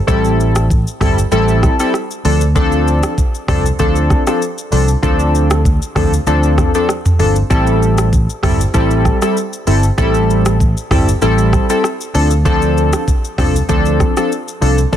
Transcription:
0.07 A1 G3 C4 E4 A4, kick, shaker
0.24 shaker
0.40 shaker
0.56 cross-stick, shaker
0.70 kick, shaker
0.87 shaker
1.01 G1 G3 C4 E4 A4, kick, cross-stick, mid tom, open hi-hat, shaker
1.18 shaker
1.32 A1 G3 C4 E4 A4, shaker
1.48 shaker
1.63 kick, cross-stick, shaker
1.80 G3 C4 E4 A4, shaker
1.94 cross-stick, shaker
2.11 shaker
2.25 D2 F3 C4 D4 A4, open hi-hat, shaker
2.41 shaker
2.55 F3 C4 D4 A4, kick, shaker
2.72 shaker
2.88 shaker
3.03 cross-stick, shaker
3.18 kick, shaker
3.35 shaker
3.48 C2 F3 C4 D4 A4, kick, cross-stick, mid tom, open hi-hat, shaker
3.66 shaker
3.79 D2 F3 C4 D4 A4, kick, shaker
3.96 shaker
4.10 kick, cross-stick, shaker
4.27 F3 C4 D4 A4, cross-stick, shaker
4.42 shaker
4.58 shaker
4.72 C2 F3 C4 D4 A4, open hi-hat, shaker
4.88 shaker
5.03 D2 F3 C4 D4 A4, kick, shaker
5.19 shaker
5.35 shaker
5.50 cross-stick, shaker
5.65 kick, shaker
5.82 shaker
5.95 D2 F3 C4 D4 A4, kick, cross-stick, mid tom, open hi-hat, shaker
6.13 shaker
6.27 D2 F3 C4 D4 A4, shaker
6.43 shaker
6.58 kick, cross-stick, mid tom, shaker
6.74 F3 C4 D4 A4, shaker
6.89 cross-stick, shaker
7.06 mid tom, shaker
7.19 G1 F3 C4 D4 A4, open hi-hat, shaker
7.36 shaker
7.50 A1 G3 C4 E4 A4, kick, shaker
7.67 shaker
7.82 shaker
7.98 cross-stick, shaker
8.13 kick, shaker
8.30 shaker
8.43 G1 G3 C4 E4 A4, kick, cross-stick, mid tom, open hi-hat, shaker
8.61 shaker
8.74 A1 G3 C4 E4 A4, kick, shaker
8.91 shaker
9.05 kick, cross-stick, shaker
9.22 G3 C4 E4 A4, cross-stick, shaker
9.37 shaker
9.53 shaker
9.67 G1 G3 C4 E4 A4, open hi-hat, shaker
9.83 shaker
9.98 A1 G3 C4 E4 A4, kick, shaker
10.14 shaker
10.30 shaker
10.46 cross-stick, shaker
10.60 kick, shaker
10.77 shaker
10.91 G1 G3 C4 E4 A4, kick, cross-stick, mid tom, open hi-hat, shaker
11.08 shaker
11.22 A1 G3 C4 E4 A4, shaker
11.38 shaker
11.53 kick, cross-stick, shaker
11.70 G3 C4 E4 A4, shaker
11.84 cross-stick, shaker
12.01 shaker
12.14 D2 F3 C4 D4 A4, open hi-hat, shaker
12.31 shaker
12.45 F3 C4 D4 A4, kick, shaker
12.62 shaker
12.77 shaker
12.93 cross-stick, shaker
13.08 kick, shaker
13.25 shaker
13.38 C2 F3 C4 D4 A4, kick, cross-stick, mid tom, open hi-hat, shaker
13.56 shaker
13.69 D2 F3 C4 D4 A4, kick, shaker
13.85 shaker
14.00 kick, cross-stick, shaker
14.17 F3 C4 D4 A4, cross-stick, shaker
14.32 shaker
14.48 shaker
14.61 C2 F3 C4 D4 A4, open hi-hat, shaker
14.78 shaker
14.92 D2 F3 C4 D4 A4, kick, shaker

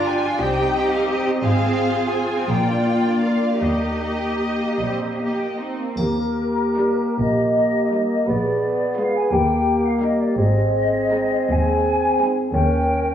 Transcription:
Already playing: G1 D4 F4 D5
0.06 G4 G#5
0.26 F4
0.40 C2 C4 D#4 G4 D#5 G5
0.61 D#4
0.79 G4
0.93 A#4 F5
1.10 G4 D#5
1.31 D#4
1.44 G#1 G#3 F4 G#4 C5 F5
1.64 C4
1.82 F4
1.98 G#4
2.12 F4 G#5
2.33 C4
2.49 A#1 A#3 F4 D5 G5
2.67 D4
2.85 F4
3.05 D4
3.23 A#3 F5
3.41 D4
3.62 D#2 G3 D#4 G4 D#5
3.81 A#3
4.01 D#4
4.19 G4
4.39 D#4
4.59 A#3
4.79 A#1 G3 C4
4.99 A#3
5.19 A#3 D#4
5.40 G4
5.59 C4 D#4
5.78 A#3
5.96 D#2 A#3 G4 A#4, triangle
6.78 G3 D#4 A#4
7.18 A#1 A#2 D#5
7.91 G3 D#4 A#4
8.26 A#1 A#2 B3 G#4 D5
8.96 G#3 F4 B4 F5
9.16 G#5
9.31 D#2 A#3 G4 G5
9.85 F5
10.01 G3 D#4 A#4 D#5
10.20 D5
10.37 G#1 G#2 C4 G#4 D#5
11.12 G#3 D#4 C5
11.50 D#2 G#5
12.20 G#3 D#4 C5
12.53 D#2 C#4 A#4 G5

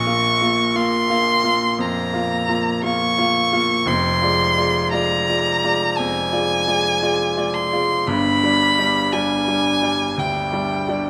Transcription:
Already playing: A#1 A#2 C#6
0.06 A#3 F4 F5
0.41 A#3 F4 F5
0.75 A#3 F4 F5 C6
1.10 A#3 F4 F5
1.43 A#3 F4 F5
1.79 F2 A#5
2.13 A#3 F4 F5
2.48 A#3 F4 F5
2.83 A#3 F4 F5 C#6
3.18 A#3 F4 F5
3.53 A#3 F4 F5
3.86 F1 F2 C6
4.22 G#3 F4 D5
4.57 G#3 F4 D5
4.92 G#3 F4 D5 A#5
5.29 G#3 F4 D5
5.63 G#3 F4 D5
5.97 F2 G#5
6.32 G#3 F4 D5
6.67 G#3 F4 D5
7.02 G#3 F4 D5
7.37 G#3 F4 D5
7.54 C6
7.72 G#3 F4 D5
8.07 G1 G2 B5
8.43 G3 D4 D5
8.79 G3 D4 D5
9.12 G3 D4 D5 G#5
9.48 G3 D4 D5
9.82 G3 D4 D5
10.18 D2 G5
10.53 G3 D4 D5
10.88 G3 D4 D5

